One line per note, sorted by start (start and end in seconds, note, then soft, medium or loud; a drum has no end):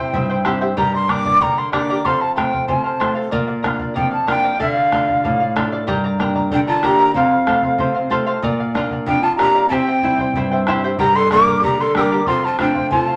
0.00 0.11 C3 medium
0.00 0.32 C4 soft
0.00 0.13 E4 soft
0.00 0.32 E4 soft
0.00 0.32 G4 medium
0.00 0.14 C5 soft
0.00 0.14 G5 medium
0.00 0.46 G5 medium
0.13 0.75 G2 medium
0.13 0.29 E4 medium
0.13 0.29 C5 medium
0.13 0.29 E5 medium
0.13 0.28 G5 medium
0.13 bombo low medium
0.29 0.44 E4 medium
0.29 0.44 C5 medium
0.29 0.44 G5 medium
0.45 0.71 C4 soft
0.45 0.60 E4 medium
0.45 0.71 E4 soft
0.45 0.61 G4 medium
0.45 0.71 G4 medium
0.45 0.60 C5 medium
0.45 0.60 E5 medium
0.45 0.60 G5 medium
0.45 bombo rim medium
0.45 bombo low medium
0.61 0.77 E4 medium
0.61 0.76 G4 medium
0.61 0.77 C5 medium
0.61 0.77 E5 medium
0.61 0.76 G5 medium
0.77 1.39 G2 medium
0.77 0.93 G4 medium
0.77 0.93 A#4 medium
0.77 0.93 D5 medium
0.77 0.93 G5 medium
0.77 0.93 A#5 medium
0.77 bombo low medium
0.94 1.08 A#4 soft
0.94 1.08 D5 medium
0.94 1.09 A#5 medium
0.94 1.12 C6 loud
1.08 1.60 A#3 soft
1.08 1.60 D4 soft
1.08 1.60 G4 soft
1.08 1.25 A#4 medium
1.08 1.25 D5 medium
1.08 1.25 G5 medium
1.08 1.24 A#5 medium
1.08 1.44 D6 loud
1.08 bombo rim soft
1.08 bombo low medium
1.25 1.40 A#4 soft
1.25 1.40 D5 soft
1.25 1.41 A#5 medium
1.25 bombo low medium
1.41 2.03 D3 medium
1.41 1.57 A#4 medium
1.41 1.57 D5 medium
1.41 1.57 G5 medium
1.41 1.56 A#5 medium
1.41 1.60 A#5 medium
1.41 bombo low medium
1.57 1.72 A#4 soft
1.57 1.72 D5 medium
1.57 1.72 A#5 medium
1.57 1.73 C6 medium
1.72 1.98 A#3 soft
1.72 1.98 D4 soft
1.72 1.89 G4 medium
1.72 1.99 G4 medium
1.72 1.89 A#4 medium
1.72 1.89 D5 medium
1.72 1.89 G5 medium
1.72 1.89 A#5 medium
1.72 2.07 D6 loud
1.72 bombo rim medium
1.72 bombo low medium
1.90 2.05 G4 medium
1.90 2.04 A#4 medium
1.90 2.05 D5 medium
1.90 2.06 G5 medium
1.90 2.05 A#5 medium
2.05 2.67 F2 medium
2.05 2.21 A4 medium
2.05 2.21 C5 medium
2.05 2.20 F5 medium
2.05 2.23 C6 medium
2.05 bombo low medium
2.21 2.36 C5 soft
2.21 2.36 F5 medium
2.21 2.35 A5 medium
2.36 2.88 A3 soft
2.36 2.88 C4 soft
2.36 2.88 F4 medium
2.36 2.52 A4 medium
2.36 2.53 C5 medium
2.36 2.51 F5 medium
2.36 2.66 G5 medium
2.36 bombo rim medium
2.36 bombo low medium
2.53 2.67 C5 soft
2.53 2.68 F5 medium
2.53 bombo low medium
2.67 3.30 C3 medium
2.67 2.84 A4 medium
2.67 2.84 C5 medium
2.67 2.83 F5 medium
2.67 3.13 A5 medium
2.67 bombo low medium
2.84 2.99 C5 soft
2.84 2.99 F5 medium
3.00 3.26 A3 soft
3.00 3.26 C4 soft
3.00 3.26 F4 soft
3.00 3.15 A4 medium
3.00 3.14 C5 medium
3.00 3.13 F5 medium
3.00 bombo rim medium
3.00 bombo low medium
3.15 3.31 A4 medium
3.15 3.32 C5 medium
3.15 3.31 F5 medium
3.31 3.94 A#2 medium
3.31 3.48 A#4 medium
3.31 3.47 D5 medium
3.31 3.46 F5 medium
3.31 bombo low medium
3.48 3.62 D5 soft
3.48 3.63 F5 medium
3.62 4.15 A#3 soft
3.62 4.15 D4 soft
3.62 4.16 F4 medium
3.62 3.79 A#4 medium
3.62 3.80 D5 medium
3.62 3.78 F5 medium
3.62 bombo rim medium
3.62 bombo low medium
3.79 3.94 D5 soft
3.79 3.95 F5 soft
3.79 bombo low medium
3.94 4.58 F2 medium
3.94 4.11 A#4 medium
3.94 4.11 D5 medium
3.94 4.09 F5 medium
3.94 4.11 G5 medium
3.94 bombo low medium
4.11 4.26 D5 soft
4.11 4.27 F5 medium
4.11 4.28 A5 medium
4.27 4.53 A#3 soft
4.27 4.53 D4 soft
4.27 4.54 F4 medium
4.27 4.44 A#4 medium
4.27 4.43 D5 medium
4.27 4.42 F5 medium
4.27 4.59 G5 loud
4.27 bombo rim medium
4.27 bombo low medium
4.43 4.59 A#4 medium
4.43 4.58 D5 medium
4.43 4.59 F5 medium
4.59 5.22 D3 medium
4.59 4.76 A4 medium
4.59 4.76 D5 medium
4.59 4.74 F5 medium
4.59 5.52 F5 medium
4.59 bombo low medium
4.76 4.91 D5 soft
4.76 4.92 F5 medium
4.92 5.43 A3 soft
4.92 5.43 D4 soft
4.92 5.43 F4 soft
4.92 5.08 A4 medium
4.92 5.08 D5 medium
4.92 5.07 F5 medium
4.92 bombo rim medium
4.92 bombo low medium
5.08 5.23 D5 soft
5.08 5.24 F5 medium
5.08 bombo low medium
5.24 5.86 A2 medium
5.24 5.40 A4 medium
5.24 5.40 D5 medium
5.24 5.39 F5 medium
5.24 bombo low medium
5.40 5.55 D5 soft
5.40 5.56 F5 medium
5.56 5.81 A3 soft
5.56 5.81 D4 soft
5.56 5.82 F4 medium
5.56 5.72 A4 medium
5.56 5.72 D5 medium
5.56 5.71 F5 medium
5.56 bombo rim medium
5.56 bombo low medium
5.72 5.87 A4 medium
5.72 5.86 D5 medium
5.72 5.87 F5 medium
5.87 6.50 G2 medium
5.87 6.03 G4 medium
5.87 6.04 A#4 medium
5.87 6.04 D5 medium
5.87 6.03 G5 medium
5.87 6.03 A#5 medium
5.87 bombo low medium
6.04 6.19 A#4 soft
6.04 6.19 D5 medium
6.04 6.20 A#5 medium
6.19 6.70 A#3 soft
6.19 6.71 D4 soft
6.19 6.71 G4 soft
6.19 6.35 A#4 medium
6.19 6.34 D5 medium
6.19 6.36 G5 medium
6.19 6.34 A#5 medium
6.19 bombo rim soft
6.19 bombo low medium
6.35 6.50 A#4 soft
6.35 6.51 D5 soft
6.35 6.51 A#5 soft
6.35 bombo low medium
6.51 7.13 D3 medium
6.51 6.59 D4 medium
6.51 6.67 A#4 medium
6.51 6.67 D5 medium
6.51 6.67 G5 medium
6.51 6.60 G5 medium
6.51 6.66 A#5 medium
6.51 bombo low medium
6.67 6.85 F4 medium
6.67 6.82 A#4 soft
6.67 6.83 D5 medium
6.67 6.86 A5 medium
6.67 6.83 A#5 medium
6.83 7.09 A#3 soft
6.83 7.09 D4 soft
6.83 6.99 G4 medium
6.83 7.14 G4 medium
6.83 7.09 G4 soft
6.83 6.98 A#4 medium
6.83 6.99 D5 medium
6.83 6.99 G5 medium
6.83 6.98 A#5 medium
6.83 7.15 A#5 loud
6.83 bombo rim medium
6.83 bombo low soft
6.99 7.16 G4 soft
6.99 7.15 A#4 medium
6.99 7.15 D5 medium
6.99 7.16 G5 medium
6.99 7.15 A#5 medium
7.14 7.77 F2 medium
7.14 8.07 C4 medium
7.14 7.31 A4 medium
7.14 7.32 C5 medium
7.14 8.07 F5 medium
7.14 7.30 F5 medium
7.14 bombo low medium
7.31 7.47 C5 soft
7.31 7.47 F5 medium
7.47 7.98 A3 soft
7.47 7.98 C4 soft
7.47 7.98 F4 medium
7.47 7.63 A4 medium
7.47 7.63 C5 medium
7.47 7.62 F5 medium
7.47 bombo rim medium
7.47 bombo low medium
7.62 7.79 C5 soft
7.62 7.79 F5 soft
7.62 bombo low medium
7.78 8.41 C3 medium
7.78 7.95 A4 medium
7.78 7.95 C5 medium
7.78 7.93 F5 medium
7.78 bombo low medium
7.95 8.10 C5 medium
7.95 8.11 F5 medium
8.10 8.36 A3 soft
8.10 8.36 C4 soft
8.10 8.36 F4 medium
8.10 8.26 A4 medium
8.10 8.26 C5 medium
8.10 8.25 F5 loud
8.10 bombo low medium
8.27 8.43 A4 medium
8.27 8.43 C5 medium
8.27 8.43 F5 medium
8.42 9.05 A#2 medium
8.42 8.59 A#4 medium
8.42 8.59 D5 medium
8.42 8.59 F5 medium
8.42 bombo low medium
8.60 8.76 D5 soft
8.60 8.75 F5 medium
8.74 9.26 A#3 medium
8.74 9.26 D4 soft
8.74 9.26 F4 medium
8.74 8.91 A#4 medium
8.74 8.92 D5 medium
8.74 8.91 F5 medium
8.74 bombo rim soft
8.74 bombo low medium
8.90 9.07 D5 soft
8.90 9.07 F5 soft
8.90 bombo low medium
9.06 9.69 F2 medium
9.06 9.23 D4 medium
9.06 9.23 A#4 medium
9.06 9.23 D5 medium
9.06 9.22 F5 medium
9.06 9.25 G5 loud
9.06 bombo low medium
9.22 9.37 F4 medium
9.22 9.38 D5 soft
9.22 9.38 F5 medium
9.22 9.36 A5 medium
9.36 9.64 A#3 soft
9.36 9.65 D4 soft
9.36 9.65 F4 soft
9.36 9.68 G4 medium
9.36 9.55 A#4 medium
9.36 9.54 D5 medium
9.36 9.54 F5 medium
9.36 9.67 A#5 loud
9.36 bombo rim medium
9.36 bombo low soft
9.55 9.71 A#4 medium
9.55 9.71 D5 medium
9.55 9.71 F5 medium
9.68 10.33 C3 medium
9.68 10.62 C4 medium
9.68 9.87 E4 medium
9.68 9.87 G4 medium
9.68 9.86 C5 medium
9.68 9.87 E5 medium
9.68 9.86 G5 medium
9.68 9.74 A5 medium
9.68 bombo low medium
9.73 10.62 G5 medium
9.87 10.03 E4 soft
9.87 10.03 C5 soft
9.87 10.03 G5 medium
10.02 10.54 G3 soft
10.02 10.54 C4 soft
10.02 10.54 E4 medium
10.02 10.19 E4 medium
10.02 10.19 C5 medium
10.02 10.19 E5 medium
10.02 10.18 G5 medium
10.02 bombo low medium
10.18 10.35 E4 soft
10.18 10.36 C5 medium
10.18 10.35 G5 soft
10.18 bombo low medium
10.34 10.97 G2 medium
10.34 10.52 E4 soft
10.34 10.51 C5 medium
10.34 10.52 E5 medium
10.34 10.50 G5 medium
10.34 bombo low medium
10.51 10.67 E4 medium
10.51 10.67 C5 medium
10.51 10.67 G5 medium
10.66 10.92 G3 soft
10.66 10.93 C4 soft
10.66 10.93 E4 soft
10.66 10.83 E4 medium
10.66 10.83 G4 medium
10.66 10.83 C5 medium
10.66 10.83 E5 medium
10.66 10.83 G5 medium
10.66 bombo rim medium
10.66 bombo low soft
10.84 10.99 E4 medium
10.84 10.98 G4 medium
10.84 10.99 C5 medium
10.84 10.99 E5 medium
10.84 10.98 G5 medium
10.98 11.61 G2 medium
10.98 11.15 G4 medium
10.98 11.17 G4 medium
10.98 11.15 A#4 medium
10.98 11.15 D5 medium
10.98 11.15 G5 medium
10.98 11.14 A#5 medium
10.98 11.17 A#5 loud
10.98 bombo low medium
11.15 11.30 A4 medium
11.15 11.30 A#4 soft
11.15 11.31 D5 medium
11.15 11.30 A#5 medium
11.15 11.31 C6 loud
11.30 11.82 G3 soft
11.30 11.82 A#3 soft
11.30 11.83 D4 soft
11.30 11.60 A#4 medium
11.30 11.47 A#4 medium
11.30 11.47 D5 medium
11.30 11.46 G5 medium
11.30 11.46 A#5 medium
11.30 11.62 D6 loud
11.30 bombo rim medium
11.30 bombo low medium
11.47 11.63 A#4 soft
11.47 11.63 D5 soft
11.47 11.63 A#5 medium
11.47 bombo low medium
11.62 12.24 D3 medium
11.62 11.82 G4 medium
11.62 11.79 A#4 soft
11.62 11.80 D5 medium
11.62 11.79 G5 medium
11.62 11.82 A#5 medium
11.62 11.78 A#5 medium
11.62 bombo low medium
11.80 11.95 A4 medium
11.80 11.96 A#4 soft
11.80 11.96 D5 medium
11.80 11.95 A#5 medium
11.80 11.96 C6 medium
11.94 12.20 G3 soft
11.94 12.20 A#3 soft
11.94 12.20 D4 medium
11.94 12.11 G4 medium
11.94 12.25 A#4 medium
11.94 12.11 A#4 medium
11.94 12.11 D5 medium
11.94 12.11 G5 medium
11.94 12.10 A#5 medium
11.94 12.02 E6 loud
11.94 bombo rim medium
11.94 bombo low medium
12.01 12.26 D6 loud
12.12 12.27 G4 medium
12.12 12.26 A#4 medium
12.12 12.27 D5 medium
12.12 12.27 G5 medium
12.12 12.27 A#5 medium
12.26 12.89 F2 medium
12.26 12.45 F4 medium
12.26 12.43 A4 medium
12.26 12.43 C5 medium
12.26 12.42 F5 medium
12.26 12.46 C6 medium
12.26 bombo low medium
12.44 12.60 F4 medium
12.44 12.58 C5 soft
12.44 12.59 F5 medium
12.44 12.60 A5 medium
12.58 13.10 F3 soft
12.58 13.10 A3 soft
12.58 13.10 C4 medium
12.58 12.89 D4 medium
12.58 12.75 A4 medium
12.58 12.75 C5 medium
12.58 12.73 F5 medium
12.58 12.89 G5 medium
12.58 bombo rim medium
12.58 bombo low medium
12.75 12.91 C5 soft
12.75 12.91 F5 soft
12.75 bombo low medium
12.91 13.16 C3 medium
12.91 13.16 F4 medium
12.91 13.07 A4 medium
12.91 13.07 C5 medium
12.91 13.06 F5 medium
12.91 13.16 A5 medium
12.91 bombo low medium
13.08 13.16 C5 soft
13.08 13.16 F5 medium